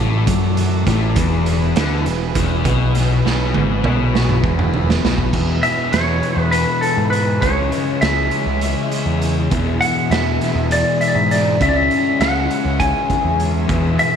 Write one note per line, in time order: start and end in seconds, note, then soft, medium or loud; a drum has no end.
0.00 0.26 A1 loud
0.00 0.27 A2 medium
0.00 5.30 E3 medium
0.00 1.13 A3 medium
0.00 1.13 A4 medium
0.00 1.14 D5 medium
0.27 0.83 F#2 medium
0.27 0.86 F#3 loud
0.27 kick loud
0.27 closed hi-hat loud
0.57 closed hi-hat medium
0.86 1.15 A1 loud
0.86 1.16 A2 loud
0.86 kick loud
0.86 snare soft
0.86 closed hi-hat medium
1.16 1.72 E1 medium
1.16 1.75 E2 loud
1.16 5.29 B3 medium
1.16 5.29 G#4 medium
1.16 5.29 B4 medium
1.16 kick loud
1.16 closed hi-hat medium
1.46 closed hi-hat medium
1.76 2.04 D2 medium
1.76 2.05 D3 loud
1.76 snare loud
1.76 closed hi-hat loud
2.06 2.34 E1 medium
2.06 2.30 E2 medium
2.06 snare soft
2.06 closed hi-hat medium
2.35 2.63 E1 medium
2.35 2.64 E2 loud
2.35 kick loud
2.35 closed hi-hat loud
2.64 3.21 B1 medium
2.64 3.23 B2 loud
2.64 kick loud
2.64 closed hi-hat medium
2.95 snare soft
2.95 closed hi-hat medium
3.25 3.53 B1 medium
3.25 3.54 B2 loud
3.25 snare medium
3.54 3.83 G#1 medium
3.54 3.83 G#2 loud
3.54 high tom medium
3.84 4.40 B1 medium
3.84 4.43 B2 loud
3.84 mid tom medium
4.15 snare medium
4.29 mid tom medium
4.43 4.99 E1 medium
4.43 5.02 E2 loud
4.43 kick medium
4.59 mid tom medium
4.74 floor tom medium
4.90 snare medium
5.03 5.32 B1 loud
5.03 5.32 B2 medium
5.03 snare loud
5.18 kick medium
5.32 7.40 E2 medium
5.32 5.60 E2 medium
5.32 7.40 B2 medium
5.32 7.40 E3 medium
5.32 7.42 E3 medium
5.32 7.41 B3 medium
5.32 13.65 G#4 medium
5.32 7.40 B4 medium
5.32 kick medium
5.32 crash medium
5.63 5.94 E5 medium
5.63 closed hi-hat medium
5.92 6.20 E2 medium
5.92 6.51 C#5 medium
5.92 snare loud
5.92 closed hi-hat medium
6.23 closed hi-hat medium
6.37 6.64 E2 medium
6.51 6.80 B4 medium
6.51 closed hi-hat medium
6.81 7.10 A4 medium
6.81 closed hi-hat medium
6.97 7.38 G#2 medium
7.10 7.41 B4 medium
7.10 closed hi-hat medium
7.40 7.69 C#2 medium
7.40 9.49 C#3 medium
7.40 9.49 E3 medium
7.40 11.56 G#3 soft
7.40 9.53 G#3 medium
7.40 9.49 C#4 medium
7.40 9.51 C#4 medium
7.40 8.04 C#5 medium
7.40 kick medium
7.40 closed hi-hat medium
7.72 closed hi-hat medium
8.01 8.29 C#2 medium
8.01 9.17 E5 medium
8.01 snare loud
8.01 closed hi-hat medium
8.31 closed hi-hat medium
8.46 8.73 C#2 medium
8.61 closed hi-hat medium
8.91 closed hi-hat medium
9.06 9.47 E2 medium
9.21 closed hi-hat medium
9.50 11.58 E2 medium
9.50 9.78 E2 medium
9.50 11.59 B2 medium
9.50 11.61 E3 medium
9.50 11.58 B3 medium
9.50 14.16 E4 medium
9.50 kick medium
9.50 closed hi-hat medium
9.81 10.12 F#5 medium
9.81 closed hi-hat medium
10.10 10.38 E2 medium
10.10 10.72 E5 medium
10.10 snare loud
10.10 closed hi-hat medium
10.41 snare soft
10.41 closed hi-hat medium
10.55 10.82 E2 loud
10.71 11.02 D5 medium
10.71 closed hi-hat medium
11.01 11.08 E5 medium
11.01 closed hi-hat medium
11.08 11.15 D5 medium
11.15 11.56 G#2 medium
11.15 11.31 E5 medium
11.31 11.59 D5 medium
11.31 snare soft
11.31 closed hi-hat medium
11.60 11.88 C#2 medium
11.60 13.67 C#3 medium
11.60 14.16 G#3 medium
11.60 13.71 G#3 medium
11.60 13.67 C#4 medium
11.60 13.69 C#4 medium
11.60 11.68 E5 medium
11.60 kick loud
11.60 closed hi-hat medium
11.69 11.75 D5 medium
11.76 12.18 E5 medium
11.91 closed hi-hat medium
12.20 12.47 C#2 medium
12.20 12.82 F#5 medium
12.20 snare loud
12.20 closed hi-hat medium
12.51 closed hi-hat medium
12.65 12.92 C#2 loud
12.80 13.43 G#5 medium
12.80 kick loud
12.80 closed hi-hat medium
13.10 kick medium
13.10 closed hi-hat medium
13.24 13.65 E2 medium
13.40 closed hi-hat medium
13.68 14.16 E2 medium
13.68 13.96 E2 medium
13.68 14.16 B2 medium
13.68 14.16 E3 medium
13.68 14.16 B3 medium
13.68 14.16 G#4 medium
13.68 kick loud
13.68 closed hi-hat medium
13.99 14.16 E5 medium
13.99 closed hi-hat medium